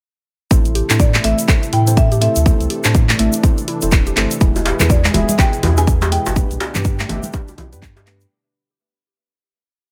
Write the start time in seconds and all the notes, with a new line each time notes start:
0.51 A1 C3 E3 A3 C4 E4 A4 C5, kick, closed hi-hat, shaker
0.65 closed hi-hat, shaker
0.75 G4, open hi-hat
0.90 A2 C4 D4 E4 A4 C5, clap, closed hi-hat, shaker
1.00 D5, kick, closed hi-hat, shaker
1.14 A3, clap, closed hi-hat, shaker
1.24 A1 A3 C4 E4 A4 E5, open hi-hat
1.39 closed hi-hat, shaker
1.48 C4 E4 A4 C5, kick, clap, closed hi-hat, shaker
1.63 closed hi-hat, shaker
1.73 A2 E4 G5, open hi-hat
1.87 C4 D4 E4 A4 C5, closed hi-hat, shaker
1.97 E5, kick, closed hi-hat, shaker
2.12 G4, closed hi-hat, shaker
2.21 A3 C4 E4 A4 C5 E5, open hi-hat
2.36 D2, closed hi-hat, shaker
2.46 A3 C4 D4 E4 A4 C5, kick, closed hi-hat, shaker
2.60 C2, closed hi-hat, shaker
2.70 G4, open hi-hat
2.84 A2 C4 D4 E4 A4 C5, clap, closed hi-hat, shaker
2.95 kick, closed hi-hat, shaker
3.09 A3, clap, closed hi-hat, shaker
3.19 A1 A3 C4 E4 A4 E5, open hi-hat
3.33 closed hi-hat, shaker
3.43 C4 E4 A4 C5, kick, closed hi-hat, shaker
3.58 closed hi-hat, shaker
3.68 E4, open hi-hat
3.82 E1 C4 D4 E4 A4 C5, closed hi-hat, shaker
3.91 kick, clap, closed hi-hat, shaker
4.07 G4, closed hi-hat, shaker
4.17 G1 A3 C4 E4 A4 C5, clap, open hi-hat
4.31 closed hi-hat, shaker
4.41 E1 B2 G#3 B3 E4 G#4 B4, kick, closed hi-hat, shaker
4.56 closed hi-hat, djembe tone, shaker
4.65 G4, open hi-hat, djembe slap
4.79 E2 B3 D4 E4 G#4 B4, clap, closed hi-hat, high conga, low conga, shaker
4.90 D5, kick, closed hi-hat, djembe tone, shaker
5.04 G#3, clap, closed hi-hat, shaker
5.14 E1 G#3 B3 E4 G#4 E5, open hi-hat, djembe bass, low conga
5.29 closed hi-hat, high conga, shaker
5.38 B3 E4 G#4 B4 G5, kick, clap, closed hi-hat, djembe tone, low conga, shaker
5.53 closed hi-hat, shaker
5.63 E2 E4, open hi-hat, djembe slap, low conga, djembe bass
5.77 B3 D4 E4 G#4 B4 G#5, closed hi-hat, djembe tone, shaker
5.87 kick, closed hi-hat, shaker
6.01 G4, closed hi-hat, djembe slap, high conga, shaker
6.12 G#3 B3 E4 G#4 B4 G5, open hi-hat
6.26 G1, closed hi-hat, djembe slap, djembe tone, shaker
6.36 D3 G3 A3 B3 D4 G4 B4, kick, closed hi-hat, shaker
6.51 B1, closed hi-hat, shaker
6.60 G4, open hi-hat, djembe slap, djembe tone
6.75 G2 B3 D4 G4 B4, clap, closed hi-hat, high conga, low conga, shaker
6.85 kick, closed hi-hat, shaker
6.99 A3, clap, closed hi-hat, shaker
7.09 G1 A3 B3 D4 G4 E5, open hi-hat, djembe tone, low conga, djembe bass
7.23 closed hi-hat, high conga, shaker
7.33 B3 D4 G4 B4, kick, closed hi-hat, djembe slap, shaker
7.48 closed hi-hat, djembe tone, shaker
7.58 B1 E4, open hi-hat, djembe slap, djembe bass, low conga
7.72 G2 B3 D4 G4 B4, closed hi-hat, shaker
7.82 kick, clap, closed hi-hat, shaker
7.96 G4, closed hi-hat, djembe slap, djembe tone, shaker
8.07 A3 B3 D4 G4 B4, clap, open hi-hat
8.21 closed hi-hat, shaker